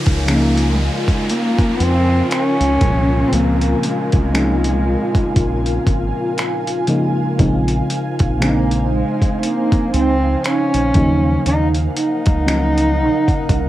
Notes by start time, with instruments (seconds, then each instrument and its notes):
Already playing: fm electric piano C#3 F3 G#3 A#3 D#4, ambient pad F4 A#4 F5 G#5, downlifter
0.06 fingered electric bass C#2, kick, closed hi-hat
0.26 fm electric piano C#3 F3 G#3 A#3 C#4, cello A#3, finger snap, closed hi-hat
0.35 fm electric piano D#4
0.57 closed hi-hat
0.75 cello G3
0.80 cello G#3
1.08 kick, closed hi-hat
1.30 cello A#3, closed hi-hat
1.59 kick, closed hi-hat
1.77 fingered electric bass F2, cello B3, closed hi-hat
1.82 cello C4
2.31 cello C#4, finger snap, closed hi-hat
2.60 fingered electric bass C#2, closed hi-hat
2.80 fingered electric bass C2, fm electric piano A#2 F3 G#3 A#3 C#4, kick, closed hi-hat
3.28 fm electric piano C#3 F3, cello C4
3.32 fingered electric bass C#2, fm electric piano G#3 A#3 C4, cello A#3, closed hi-hat
3.61 closed hi-hat
3.83 cello G#3, closed hi-hat
4.12 fingered electric bass C2, kick, closed hi-hat
4.33 fm electric piano F3 G#3 A#3 C#4 D#4, finger snap, closed hi-hat
4.64 closed hi-hat
5.15 kick, closed hi-hat
5.36 fingered electric bass A#1, kick, closed hi-hat
5.66 closed hi-hat
5.87 fingered electric bass G#1, kick, closed hi-hat
6.38 finger snap, closed hi-hat
6.67 closed hi-hat
6.87 fm electric piano C#3 F3 G#3 A#3 D#4, closed hi-hat
7.38 fingered electric bass A#1, fm electric piano C#3 F3 G#3 C4 D#4, ambient pad D#4 C5, kick, closed hi-hat
7.68 closed hi-hat
7.90 closed hi-hat
8.19 fingered electric bass A#1, kick, closed hi-hat
8.37 fm electric piano C#3 F3 G#3, cello A3
8.42 cello A#3, fm electric piano C4 D4, finger snap, closed hi-hat
8.49 fm electric piano D#4
8.71 closed hi-hat
8.94 cello G#3
9.22 kick, closed hi-hat
9.39 cello A3
9.43 cello A#3, closed hi-hat
9.72 kick, closed hi-hat
9.94 fingered electric bass C#2, cello C4, closed hi-hat
10.44 cello C#4, finger snap, closed hi-hat
10.74 fingered electric bass A#1, closed hi-hat
10.94 fingered electric bass D#2, fm electric piano C#3 F3 F#3 A#3 D#4, ambient pad D#4 A#4 F#5, kick, closed hi-hat
11.46 fingered electric bass D#2, cello D#4, closed hi-hat
11.74 closed hi-hat
11.97 cello D#4, closed hi-hat
12.26 fingered electric bass C#2, kick, closed hi-hat
12.46 fm electric piano F3 F#3 A#3 C#4 D#4, finger snap, closed hi-hat
12.78 closed hi-hat
13.28 kick, closed hi-hat
13.49 fingered electric bass C2, kick, closed hi-hat